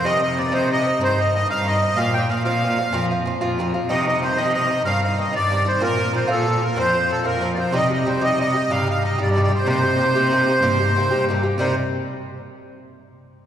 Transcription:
0.03 bouzouki G2 D#3 C4 D#4, cello C3, accordion D#5
0.21 bouzouki D#3 C4 D#4, accordion D#5
0.37 bouzouki G2 D#3 C4 D#4, accordion D5
0.52 bouzouki G2 D#3 C4 D#4, cello C3, accordion C5
0.70 bouzouki G2 D#3 C4 D#4, accordion D#5
0.85 bouzouki D#3 C4 D#4
1.00 cello G2, bouzouki G2 D#3 C4 D#4
1.04 accordion C5
1.18 bouzouki D#3 C4 D#4, accordion D#5
1.34 bouzouki G2 D#3 C4 D#4, accordion D#5
1.48 cello G2, bouzouki G2 D#3 C4 D#4, accordion F5
1.67 bouzouki G2 D#3 C4 D#4, accordion D#5
1.81 bouzouki D#3 C4 D#4
1.96 cello A#2, bouzouki A#2 F3 C4 F4, accordion F5
2.14 bouzouki F3 C4 F4, accordion G5
2.29 bouzouki A#2 F3 C4 F4, accordion F5
2.44 cello A#2, bouzouki A#2 F3 C4 F4, accordion F5
2.62 bouzouki A#2 F3 C4 F4
2.78 bouzouki F3 C4 F4
2.92 cello F2, bouzouki A#2 F3 C4 F4
3.11 bouzouki F3 C4 F4
3.25 bouzouki A#2 F3 C4 F4
3.41 cello F2, bouzouki A#2 F3 C4 F4
3.59 bouzouki A#2 F3 C4 F4
3.74 bouzouki F3 C4 F4
3.89 bouzouki G2 D#3 C4 D#4, cello C3, accordion D#5
4.06 bouzouki D#3 C4 D#4, accordion D#5
4.22 bouzouki G2 D#3 C4 D#4, accordion C5
4.36 bouzouki G2 D#3 C4 D#4, cello C3, accordion D#5
4.54 bouzouki G2 D#3 C4 D#4, accordion D#5
4.70 bouzouki D#3 C4 D#4
4.84 cello G2, bouzouki G2 D#3 C4 D#4, accordion F5
5.03 bouzouki D#3 C4 D#4, accordion F5
5.17 bouzouki G2 D#3 C4 D#4, accordion D#5
5.33 cello G2, bouzouki G2 D#3 C4 D#4, accordion D5
5.51 bouzouki G2 D#3 C4 D#4
5.65 bouzouki D#3 C4 D#4, accordion C5
5.80 bouzouki A#2 F3 C4 F4, cello A#2, accordion A#4
5.97 bouzouki F3 C4 F4
6.13 bouzouki A#2 F3 C4 F4, accordion C5
6.28 cello A#2, bouzouki A#2 F3 C4 F4, accordion A4
6.46 bouzouki A#2 F3 C4 F4
6.62 bouzouki F3 C4 F4, accordion A#4
6.76 cello F2, bouzouki A#2 F3 C4 F4, accordion C5
6.93 bouzouki F3 C4 F4
7.09 bouzouki A#2 F3 C4 F4, accordion A4
7.24 cello F2, bouzouki A#2 F3 C4 F4, accordion A#4
7.41 bouzouki A#2 F3 C4 F4
7.54 bouzouki C4 F4, accordion D5
7.59 bouzouki F3, accordion C5
7.72 bouzouki C3 G3 D#4 G4, cello C3, accordion D#5
7.90 bouzouki G3 D#4 G4, accordion D#5
8.05 bouzouki C3 G3 D#4 G4, accordion C5
8.21 cello C3, bouzouki C3 G3 D#4 G4, accordion D#5
8.38 bouzouki C3 G3 D#4 G4, accordion D#5
8.54 bouzouki G3 D#4 G4
8.70 cello G2, bouzouki C3 G3 D#4 G4, accordion F5
8.88 bouzouki G3 D#4 G4, accordion F5
9.03 bouzouki C3 G3 D#4 G4, accordion D#5
9.18 cello G2, bouzouki C3 G3 D#4 G4, accordion D5
9.31 accordion D5
9.36 bouzouki C3 G3 D#4 G4
9.43 accordion D5
9.50 bouzouki G3 D#4 G4
9.55 accordion C5
9.66 cello C3, bouzouki C3 A#3 D#4 G4, accordion C5
9.83 bouzouki A#3 D#4 G4
9.99 bouzouki C3 A#3 D#4 G4
10.14 cello C3, bouzouki C3 A#3 D#4 G4
10.32 bouzouki C3 A#3 D#4 G4
10.48 bouzouki A#3 D#4 G4
10.61 cello G2, bouzouki C3 A#3 D#4 G4
10.79 bouzouki A#3 D#4 G4
10.96 bouzouki C3 A#3 D#4 G4
11.10 cello G2, bouzouki C3 A#3 D#4 G4
11.29 bouzouki C3 A#3 D#4 G4
11.43 bouzouki A#3 D#4 G4
11.58 bouzouki C3 G3 D#4 A#4, cello C3, accordion C5

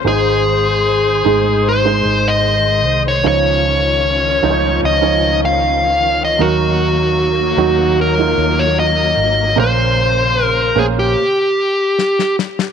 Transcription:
Already playing: string section C5
0.04 fingered electric bass G#1, grand piano G#2 G#3 D#4 C5, string section D#3 G#3, lead electric guitar G#4
1.25 fingered electric bass G#1, grand piano G#3 D#4 G#4
1.69 lead electric guitar C5
1.85 grand piano G#3 D#4 C5
2.05 fingered electric bass G#1
2.28 lead electric guitar D#5
2.85 fingered electric bass C2
3.08 lead electric guitar C#5
3.23 fingered electric bass C#2, grand piano C#3 F3 D#4 C#5, string section F3 C#4
3.27 lead electric guitar C#5
4.42 fingered electric bass C#2, grand piano F3 D#4 C5
4.50 grand piano C#5
4.82 fingered electric bass C#2, lead electric guitar D#5
5.02 grand piano F3 D#4 C#5
5.45 lead electric guitar F5
6.25 lead electric guitar D#5
6.39 fingered electric bass D#2, grand piano D#3 F#3 D#4 A#4, string section F#3 A#3, lead electric guitar F#4
7.57 fingered electric bass D#2, grand piano F#3 D#4 F#4
8.01 lead electric guitar A#4
8.17 grand piano F#3 D#4 F4
8.38 fingered electric bass D#2
8.59 lead electric guitar C#5
8.79 lead electric guitar D#5
9.17 fingered electric bass G#1
9.56 fingered electric bass A#1, grand piano A#2 A#3 C#4 C5, string section C#3 C5, lead electric guitar C5
10.43 lead electric guitar A#4
10.76 fingered electric bass A#1, grand piano A#3 C#4 C5, lead electric guitar G#4
10.99 lead electric guitar G4
11.99 snare
12.19 snare
12.39 snare
12.59 snare

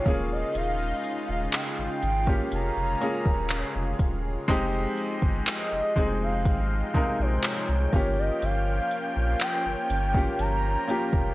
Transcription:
Already playing: analog synth pad G#3 F4, soft synth lead C#5
0.05 sub bass D#1, analog synth pad C#3 D#4, grand piano A#3 C#4 F4 G#4, kick, closed hi-hat
0.32 soft synth lead D#5
0.55 sub bass D#1, soft synth lead F5, closed hi-hat
1.04 closed hi-hat
1.29 sub bass D#1, soft synth lead F5
1.53 soft synth lead G5, clap, closed hi-hat
1.78 sub bass G#1
2.02 sub bass G#1, analog synth pad C#4, closed hi-hat
2.26 grand piano A#3 C#4 F4 G4, kick
2.52 sub bass F1, soft synth lead A#5, closed hi-hat
2.77 sub bass F1
3.00 grand piano A#3 C#4 F4 G#4, closed hi-hat
3.26 sub bass D#1, kick
3.50 clap, closed hi-hat
3.75 sub bass F1
3.99 sub bass D#1, kick, closed hi-hat
4.48 sub bass F1, analog synth pad F3 D#4 G5, grand piano G#3 C4 D#4 G4, kick, closed hi-hat
4.97 closed hi-hat
5.22 sub bass G1, kick
5.47 soft synth lead D#5, clap, closed hi-hat
5.72 sub bass F1
5.96 sub bass F1, grand piano G#3 C4 D#4 G#4, kick, closed hi-hat
6.22 soft synth lead F5
6.45 sub bass G#1, kick, closed hi-hat
6.94 grand piano C3 G#3 D#4 A#4, kick, closed hi-hat
7.19 sub bass A#1, soft synth lead C5
7.43 soft synth lead C#5, clap, closed hi-hat
7.69 sub bass C2
7.92 sub bass G1, grand piano A#3 C#4 F4 G4, analog synth pad A#3 C#4, kick, closed hi-hat
8.19 soft synth lead D#5
8.42 sub bass G1, soft synth lead F5, closed hi-hat
8.91 closed hi-hat
9.16 sub bass A#1, soft synth lead F5
9.40 soft synth lead G5, clap, closed hi-hat
9.66 sub bass G1
9.90 sub bass G1, closed hi-hat
10.14 grand piano A#3 C#4 F4 G4, kick
10.39 sub bass G1, soft synth lead A#5, closed hi-hat
10.87 grand piano A#3 C#4 F4 G4, closed hi-hat
11.13 sub bass F1, kick

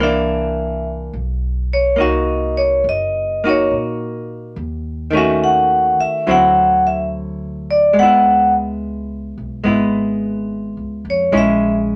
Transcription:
Already playing: upright bass C2
0.00 hollow-body jazz guitar E3 A#3 D4, vibraphone E5
1.13 upright bass B1
1.73 vibraphone C#5
1.96 upright bass C2, hollow-body jazz guitar A#3 D#4
2.00 hollow-body jazz guitar F#4, vibraphone D#5
2.57 vibraphone C#5
2.84 upright bass F#1
2.89 vibraphone D#5
3.44 hollow-body jazz guitar A#3 D#4 F#4
3.49 vibraphone C#5
3.71 upright bass A#2
4.56 upright bass D#2
5.11 hollow-body jazz guitar D#3 A3 C#4
5.17 hollow-body jazz guitar F#4, vibraphone E5
5.44 vibraphone F#5
5.99 vibraphone E5, muted upright bass stroke
6.27 upright bass D2, hollow-body jazz guitar D3 F#3 C4 E4
6.31 vibraphone F#5
6.87 vibraphone E5
7.71 vibraphone D5
7.93 upright bass C#2, hollow-body jazz guitar G#3
7.99 hollow-body jazz guitar B3 E4, vibraphone F#5
9.38 upright bass B1
9.64 upright bass G#1, hollow-body jazz guitar G#3 B3 E4
10.77 upright bass C#2
11.05 upright bass F2
11.10 vibraphone C#5
11.32 upright bass A#1, hollow-body jazz guitar G#3 C#4 E4
11.37 vibraphone E5

